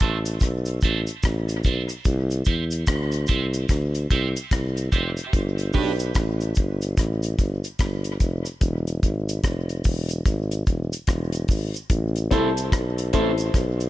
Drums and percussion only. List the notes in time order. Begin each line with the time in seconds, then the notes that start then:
0.00 kick, closed hi-hat, cabasa
0.25 closed hi-hat, cabasa
0.40 kick, cross-stick, closed hi-hat, cabasa
0.65 closed hi-hat, cabasa
0.81 kick, closed hi-hat, cabasa
1.07 closed hi-hat, cabasa
1.23 kick, cross-stick, closed hi-hat, cabasa
1.49 closed hi-hat, cabasa
1.64 kick, closed hi-hat, cabasa
1.89 closed hi-hat, cabasa
2.05 kick, closed hi-hat, cabasa
2.30 closed hi-hat, cabasa
2.45 kick, closed hi-hat, cabasa
2.71 closed hi-hat, cabasa
2.87 kick, cross-stick, closed hi-hat, cabasa
3.12 closed hi-hat, cabasa
3.27 kick, closed hi-hat, cabasa
3.54 closed hi-hat, cabasa
3.69 kick, cross-stick, closed hi-hat, cabasa
3.95 closed hi-hat, cabasa
4.11 kick, closed hi-hat, cabasa
4.36 closed hi-hat, cabasa
4.51 kick, cross-stick, closed hi-hat, cabasa
4.77 closed hi-hat, cabasa
4.92 kick, closed hi-hat, cabasa
5.17 closed hi-hat, cabasa
5.33 kick, closed hi-hat, cabasa
5.58 closed hi-hat, cabasa
5.73 kick, open hi-hat, cabasa
5.99 closed hi-hat, cabasa
6.15 kick, cross-stick, closed hi-hat, cabasa
6.40 closed hi-hat, cabasa
6.55 kick, closed hi-hat, cabasa
6.81 closed hi-hat, cabasa
6.97 kick, cross-stick, closed hi-hat, cabasa
7.23 closed hi-hat, cabasa
7.39 kick, closed hi-hat, cabasa
7.64 closed hi-hat, cabasa
7.79 kick, cross-stick, closed hi-hat, cabasa
8.04 closed hi-hat, cabasa
8.20 kick, closed hi-hat, cabasa
8.45 closed hi-hat, cabasa
8.61 kick, closed hi-hat, cabasa
8.87 closed hi-hat, cabasa
9.03 kick, closed hi-hat, cabasa
9.29 closed hi-hat, cabasa
9.44 kick, cross-stick, closed hi-hat, cabasa
9.69 closed hi-hat, cabasa
9.84 kick, open hi-hat, cabasa
10.09 closed hi-hat, cabasa
10.26 kick, closed hi-hat, cabasa
10.51 closed hi-hat, cabasa
10.67 kick, closed hi-hat, cabasa
10.93 closed hi-hat, cabasa
11.07 kick, cross-stick, closed hi-hat, cabasa
11.32 closed hi-hat, cabasa
11.48 kick, open hi-hat, cabasa
11.74 closed hi-hat, cabasa
11.90 kick, closed hi-hat, cabasa
12.16 closed hi-hat, cabasa
12.31 kick, closed hi-hat, cabasa
12.57 closed hi-hat, cabasa
12.72 kick, cross-stick, closed hi-hat, cabasa
12.98 closed hi-hat, cabasa
13.13 kick, closed hi-hat, cabasa
13.38 closed hi-hat, cabasa
13.54 kick, cross-stick, closed hi-hat, cabasa
13.80 closed hi-hat, cabasa